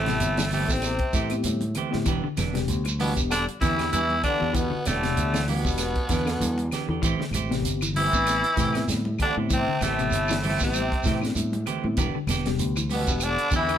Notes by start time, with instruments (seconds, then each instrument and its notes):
Already playing: fingered electric bass A1, trombone section A2, trombone A2, tenor saxophone A3, clean electric guitar C4 G4
0.06 clean electric guitar C3, reed electric piano B3 C4 G4, snare, closed hi-hat, high conga, shekere
0.20 fingered electric bass G1, closed hi-hat, shekere
0.37 clean electric guitar E3, snare, closed hi-hat, high conga, claves, shekere
0.51 clean electric guitar E3 A3 C4 G4, tenor saxophone A3, open hi-hat, high conga, low conga, shekere
0.55 trombone section A2, trombone A2
0.67 fingered electric bass A1, trombone section C3, reed electric piano B3 C4 A4, kick, snare, shekere
0.72 trombone C3, tenor saxophone C4
0.82 snare, closed hi-hat, claves, shekere
0.99 kick, closed hi-hat
1.13 fingered electric bass A2, clean electric guitar E3 A3 C4 G4, kick, closed hi-hat, shekere
1.29 reed electric piano B3 C4 G4, closed hi-hat, claves, shekere
1.44 fingered electric bass A2, closed hi-hat, high conga, low conga, shekere
1.61 closed hi-hat, high conga
1.75 clean electric guitar E3 A3 C4 G4, closed hi-hat, low conga, claves, shekere
1.90 clean electric guitar D3, reed electric piano B3 C4 G4, snare
1.94 fingered electric bass A2
2.05 fingered electric bass E1, clean electric guitar E3 B3 D4 G4, kick, closed hi-hat, shekere
2.24 clean electric guitar D3, muted fingered electric bass stroke
2.37 fingered electric bass E1, clean electric guitar E3 B3 D4, snare, closed hi-hat, high conga, claves, shekere
2.52 clean electric guitar C3, reed electric piano B3 D4 G4, snare, closed hi-hat, high conga
2.56 shekere
2.68 fingered electric bass D2, closed hi-hat, shekere
2.85 muted clean electric guitar stroke, closed hi-hat, high conga, claves, shekere
2.99 trombone B2, trombone section B2, clean electric guitar E3 B3 D4 G4, tenor saxophone B3, open hi-hat, high conga, low conga, shekere
3.14 fingered electric bass E1, reed electric piano B3 D4 G4, kick, closed hi-hat, shekere
3.30 trombone section D3, trombone D3, tenor saxophone D4, snare, closed hi-hat, high conga, claves, shekere
3.49 closed hi-hat
3.61 fingered electric bass E2, clean electric guitar D3 E3 B3 D4 G4, trombone E3, trombone section E3, tenor saxophone E4, kick, snare, closed hi-hat, shekere
3.75 reed electric piano B3 D4 G4, clean electric guitar G4, closed hi-hat, claves, shekere
3.79 clean electric guitar B3 D4, snare
3.91 fingered electric bass E2, trombone section E3, trombone E3, tenor saxophone E4, closed hi-hat, high conga, shekere
4.10 high conga
4.23 trombone section D3, trombone D3, clean electric guitar E3 B3 D4 G4, tenor saxophone D4, kick, closed hi-hat, low conga, claves, shekere
4.39 fingered electric bass E2, clean electric guitar E3 D4 G4, reed electric piano B3 D4 G4
4.43 clean electric guitar B3
4.53 trombone section B2, trombone B2, clean electric guitar E3, tenor saxophone B3, kick, closed hi-hat, shekere
4.71 clean electric guitar D3, muted fingered electric bass stroke
4.85 fingered electric bass E1, trombone section A2, trombone D3, tenor saxophone A3, clean electric guitar B3 D4 G4, snare, closed hi-hat, high conga, low conga, claves, shekere
5.01 clean electric guitar C3, reed electric piano B3 D4 G4, snare, closed hi-hat, shekere
5.17 fingered electric bass D2, closed hi-hat, shekere
5.33 clean electric guitar E3, snare, closed hi-hat, claves, shekere
5.48 trombone section B2, trombone B2, clean electric guitar E3 B3 D4 G4, tenor saxophone B3, open hi-hat, high conga, low conga, shekere
5.64 fingered electric bass E1, reed electric piano B3 D4 G4, kick, shekere
5.78 snare, closed hi-hat, claves, shekere
5.95 kick, closed hi-hat
6.09 fingered electric bass E2, clean electric guitar D3 E3 B3 D4, muted clean electric guitar stroke, kick, snare, closed hi-hat, shekere
6.25 reed electric piano B3 D4 A4, snare, closed hi-hat, claves, shekere
6.40 fingered electric bass E2, closed hi-hat, high conga, shekere
6.58 closed hi-hat, high conga
6.71 clean electric guitar E3 B3 D4 G4, snare, closed hi-hat, low conga, claves, shekere
6.88 fingered electric bass E2, clean electric guitar E3 B3 D4 G4, reed electric piano B3 D4 A4
7.02 fingered electric bass A1, clean electric guitar E3 A3 C4 G4, kick, closed hi-hat, shekere
7.18 clean electric guitar D3, muted fingered electric bass stroke, snare
7.31 fingered electric bass A1, clean electric guitar A3 C4, muted clean electric guitar stroke, closed hi-hat, high conga, claves, shekere
7.35 clean electric guitar G4
7.49 clean electric guitar C3, reed electric piano B3 C4 G4, snare, closed hi-hat, shekere
7.62 fingered electric bass G1, closed hi-hat, shekere
7.81 clean electric guitar E3, closed hi-hat, claves, shekere
7.94 clean electric guitar E3 A3 C4 G4, trombone section E3, tenor saxophone E4, open hi-hat, high conga, low conga, shekere
7.98 trombone E3
8.13 fingered electric bass A1, reed electric piano B3 C4 D4, kick, shekere
8.26 snare, closed hi-hat, claves, shekere
8.44 closed hi-hat
8.57 fingered electric bass A2, clean electric guitar C3 E3 A3 C4 G4, kick, snare, closed hi-hat, shekere
8.74 reed electric piano B3 C4 E4, snare, closed hi-hat, claves, shekere
8.88 fingered electric bass A2, snare, closed hi-hat, high conga, low conga, shekere
9.05 high conga
9.19 trombone section D3, trombone D3, clean electric guitar E3 A3 C4 G4, tenor saxophone D4, kick, closed hi-hat, low conga, claves, shekere
9.37 fingered electric bass A2, clean electric guitar D3 A3 C4 G4, reed electric piano B3 C4 E4
9.50 trombone C3, trombone section C3, clean electric guitar E3, tenor saxophone C4, kick, closed hi-hat, shekere
9.68 clean electric guitar D3, muted fingered electric bass stroke
9.80 fingered electric bass A1, trombone section A2, clean electric guitar E3 A3 C4 G4, tenor saxophone A3, snare, closed hi-hat, high conga, claves, shekere
9.85 trombone A2
9.98 clean electric guitar C3, reed electric piano B3 C4 G4, closed hi-hat, shekere
10.11 fingered electric bass G1, closed hi-hat, shekere
10.28 clean electric guitar E3, snare, closed hi-hat, claves, shekere
10.42 trombone A2, clean electric guitar E3 A3 C4 G4, open hi-hat, high conga, low conga, shekere
10.46 trombone section A2, tenor saxophone A3
10.59 fingered electric bass A1, reed electric piano B3 C4 G4, kick, snare, shekere
10.63 trombone section C3, trombone C3, tenor saxophone C4
10.73 closed hi-hat, high conga, claves, shekere
10.92 kick, closed hi-hat
11.04 fingered electric bass A2, clean electric guitar C3 E3 A3 C4 G4, kick, snare, closed hi-hat, shekere
11.20 reed electric piano B3 C4 D4, claves, shekere
11.25 snare, closed hi-hat
11.35 fingered electric bass A2, closed hi-hat, high conga, shekere
11.53 closed hi-hat, high conga
11.66 clean electric guitar E3 A3 C4 G4, closed hi-hat, low conga, claves, shekere
11.84 fingered electric bass A2, reed electric piano B3 C4 E4, muted clean electric guitar stroke, high conga
11.97 fingered electric bass E1, clean electric guitar E3 B3 D4 G4, kick, closed hi-hat, shekere
12.15 clean electric guitar D3
12.27 fingered electric bass E1, clean electric guitar B3 D4 G4, snare, closed hi-hat, high conga, low conga, claves, shekere
12.45 clean electric guitar C3, reed electric piano B3 D4 G4, snare, closed hi-hat, high conga, shekere
12.59 fingered electric bass D2, closed hi-hat, shekere
12.76 clean electric guitar E3, closed hi-hat, claves, shekere
12.90 trombone B2, trombone section B2, clean electric guitar B3 G4, tenor saxophone B3, muted clean electric guitar stroke, open hi-hat, high conga, low conga, shekere
13.07 fingered electric bass E1, reed electric piano B3 D4 G4, kick, closed hi-hat, shekere
13.20 trombone D3, closed hi-hat, claves, shekere
13.24 trombone section D3, tenor saxophone D4
13.39 closed hi-hat
13.51 fingered electric bass E2, clean electric guitar D3 D4 G4, trombone section E3, trombone E3, muted clean electric guitar stroke, kick, closed hi-hat, shekere
13.56 tenor saxophone E4
13.68 reed electric piano B3 D4 G4, clean electric guitar D4 G4, closed hi-hat, claves, shekere